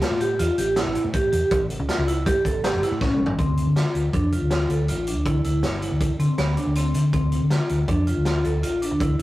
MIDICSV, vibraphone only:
0, 0, Header, 1, 2, 480
1, 0, Start_track
1, 0, Key_signature, -1, "minor"
1, 0, Tempo, 374532
1, 1940, Time_signature, 5, 2, 24, 8
1, 11818, End_track
2, 0, Start_track
2, 0, Title_t, "Vibraphone"
2, 0, Program_c, 0, 11
2, 20, Note_on_c, 0, 65, 78
2, 183, Note_off_c, 0, 65, 0
2, 263, Note_on_c, 0, 67, 74
2, 425, Note_off_c, 0, 67, 0
2, 503, Note_on_c, 0, 65, 83
2, 665, Note_off_c, 0, 65, 0
2, 744, Note_on_c, 0, 67, 72
2, 905, Note_off_c, 0, 67, 0
2, 979, Note_on_c, 0, 64, 88
2, 1305, Note_off_c, 0, 64, 0
2, 1456, Note_on_c, 0, 67, 74
2, 1620, Note_off_c, 0, 67, 0
2, 1695, Note_on_c, 0, 67, 69
2, 2022, Note_off_c, 0, 67, 0
2, 2419, Note_on_c, 0, 65, 74
2, 2582, Note_off_c, 0, 65, 0
2, 2660, Note_on_c, 0, 64, 72
2, 2822, Note_off_c, 0, 64, 0
2, 2899, Note_on_c, 0, 67, 82
2, 3062, Note_off_c, 0, 67, 0
2, 3139, Note_on_c, 0, 69, 69
2, 3302, Note_off_c, 0, 69, 0
2, 3387, Note_on_c, 0, 67, 80
2, 3547, Note_off_c, 0, 67, 0
2, 3630, Note_on_c, 0, 64, 71
2, 3788, Note_off_c, 0, 64, 0
2, 3863, Note_on_c, 0, 61, 71
2, 4187, Note_off_c, 0, 61, 0
2, 4345, Note_on_c, 0, 60, 77
2, 4668, Note_off_c, 0, 60, 0
2, 4819, Note_on_c, 0, 65, 67
2, 5144, Note_off_c, 0, 65, 0
2, 5302, Note_on_c, 0, 62, 69
2, 5463, Note_off_c, 0, 62, 0
2, 5544, Note_on_c, 0, 65, 64
2, 5705, Note_off_c, 0, 65, 0
2, 5786, Note_on_c, 0, 65, 75
2, 5946, Note_off_c, 0, 65, 0
2, 6022, Note_on_c, 0, 69, 64
2, 6184, Note_off_c, 0, 69, 0
2, 6267, Note_on_c, 0, 65, 65
2, 6427, Note_off_c, 0, 65, 0
2, 6506, Note_on_c, 0, 62, 62
2, 6666, Note_off_c, 0, 62, 0
2, 6743, Note_on_c, 0, 64, 80
2, 6904, Note_off_c, 0, 64, 0
2, 6981, Note_on_c, 0, 64, 61
2, 7306, Note_off_c, 0, 64, 0
2, 7456, Note_on_c, 0, 64, 66
2, 7783, Note_off_c, 0, 64, 0
2, 7940, Note_on_c, 0, 60, 66
2, 8103, Note_off_c, 0, 60, 0
2, 8183, Note_on_c, 0, 59, 80
2, 8345, Note_off_c, 0, 59, 0
2, 8424, Note_on_c, 0, 62, 66
2, 8586, Note_off_c, 0, 62, 0
2, 8665, Note_on_c, 0, 60, 69
2, 8989, Note_off_c, 0, 60, 0
2, 9144, Note_on_c, 0, 60, 77
2, 9468, Note_off_c, 0, 60, 0
2, 9625, Note_on_c, 0, 65, 68
2, 9949, Note_off_c, 0, 65, 0
2, 10112, Note_on_c, 0, 62, 76
2, 10270, Note_off_c, 0, 62, 0
2, 10345, Note_on_c, 0, 65, 62
2, 10506, Note_off_c, 0, 65, 0
2, 10589, Note_on_c, 0, 65, 79
2, 10749, Note_off_c, 0, 65, 0
2, 10827, Note_on_c, 0, 69, 69
2, 10987, Note_off_c, 0, 69, 0
2, 11062, Note_on_c, 0, 65, 71
2, 11224, Note_off_c, 0, 65, 0
2, 11307, Note_on_c, 0, 62, 66
2, 11467, Note_off_c, 0, 62, 0
2, 11548, Note_on_c, 0, 64, 81
2, 11708, Note_off_c, 0, 64, 0
2, 11818, End_track
0, 0, End_of_file